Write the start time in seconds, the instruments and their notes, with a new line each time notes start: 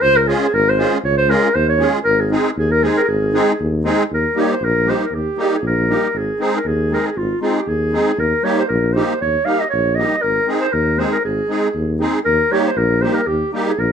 0.01 tuba C#2, clarinet C5
0.16 clarinet A#4
0.26 accordion G#3 C#4 F4 G#4, clarinet G#4
0.53 tuba G#1, clarinet A#4
0.69 clarinet C5
0.77 accordion G#3 C#4 F4 G#4
1.04 tuba C#2, clarinet C#5
1.17 clarinet C5
1.28 accordion G#3 C#4 F4 G#4, clarinet A#4
1.55 tuba D#2, clarinet C5
1.69 clarinet C#5
1.78 accordion G#3 C#4 F4 G#4
2.04 tuba G#1, clarinet A#4
2.20 clarinet G#4
2.30 accordion G#3 C4 D#4 G#4
2.57 tuba D#2, clarinet G#4
2.71 clarinet A#4
2.81 accordion G#3 C4 D#4 G#4, clarinet G#4
2.97 clarinet G#4 A#4
3.04 clarinet A#4
3.08 tuba G#1, clarinet G#4
3.32 accordion G#3 C4 D#4 G#4
3.60 tuba D#2
3.84 accordion G#3 C4 D#4 G#4
4.11 tuba D#2, clarinet A#4
4.34 accordion G3 A#3 D#4 G4
4.40 clarinet C#5
4.52 clarinet C5
4.61 tuba A#1, clarinet A#4
4.85 accordion G3 A#3 D#4 G4
4.90 clarinet C5
5.05 clarinet A#4
5.11 tuba D#2, clarinet G4
5.36 accordion G3 A#3 D#4 G4
5.41 clarinet G4 G#4
5.46 clarinet G4
5.55 clarinet G#4
5.62 tuba A#1
5.67 clarinet A#4
5.88 accordion G3 A#3 D#4 G4
6.14 tuba G#1, clarinet G#4
6.39 accordion G#3 C4 D#4 G#4, clarinet C5
6.56 clarinet A#4
6.65 tuba D#2, clarinet G#4
6.90 accordion G#3 C4 D#4 G#4, clarinet A#4
7.07 clarinet G#4
7.16 tuba G#1, clarinet F4
7.41 accordion G#3 C4 D#4 G#4, clarinet F4
7.57 clarinet G4
7.67 tuba D#2, clarinet G#4
7.92 accordion G#3 C4 D#4 G#4
8.18 tuba D#2, clarinet A#4
8.43 accordion G3 A#3 D#4 G4, clarinet C#5
8.58 clarinet C5
8.68 tuba A#1, clarinet A#4
8.93 accordion G3 A#3 D#4 G4, clarinet C5
9.21 tuba D#2, clarinet C#5
9.44 accordion G3 A#3 D#4 G4, clarinet F5
9.60 clarinet D#5
9.70 tuba A#1, clarinet C#5
9.95 accordion G3 A#3 D#4 G4, clarinet D#5
10.22 tuba G#1, clarinet A#4
10.46 accordion G#3 C4 D#4 G#4
10.61 clarinet C5
10.73 tuba D#2, clarinet A#4
10.97 accordion G#3 C4 D#4 G#4, clarinet C5
11.12 clarinet A#4
11.25 tuba G#1, clarinet G#4
11.48 accordion G#3 C4 D#4 G#4
11.75 tuba D#2
11.99 accordion G#3 C4 D#4 G#4
12.25 tuba D#2, clarinet A#4
12.51 accordion G3 A#3 D#4 G4, clarinet C#5
12.67 clarinet C5
12.77 tuba A#1, clarinet A#4
13.02 accordion G3 A#3 D#4 G4, clarinet C5
13.14 clarinet A#4
13.27 tuba D#2, clarinet G4
13.52 accordion G3 A#3 D#4 G4, clarinet G4
13.68 clarinet G#4
13.78 tuba A#1, clarinet A#4